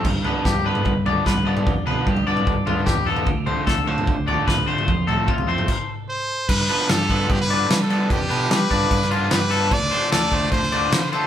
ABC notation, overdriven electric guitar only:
X:1
M:4/4
L:1/8
Q:1/4=149
K:Gmix
V:1 name="Overdriven electric guitar" clef=bass
z [D,F,B,D] z [D,F,B,D] z [D,F,B,D] z [D,F,B,D] | z [D,F,B,D] z [D,F,B,D] z [D,F,B,D] z [D,F,B,D] | z [D,F,A,D] z [D,F,A,D] z [D,F,A,D] z [D,F,A,D] | z [C,F,A,C] z [C,F,A,C] z4 |
z [D,F,B,D] z [D,F,B,D] z [D,F,B,D] z [D,F,B,D] | z [D,F,B,D] z [D,F,B,D] z [D,F,B,D] z [D,F,B,D] | z [D,F,A,D] z [D,F,A,D] z [D,F,A,D] z [D,F,A,D] |]